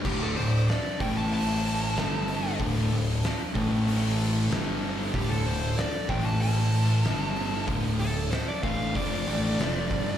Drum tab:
CC |x-------|--------|--------|--------|
HH |-ooooooo|oooooooo|oooooooo|oooooooo|
SD |--o---o-|--o---o-|--o---o-|--o---o-|
BD |o--o----|o--o----|o--o----|o--oo--o|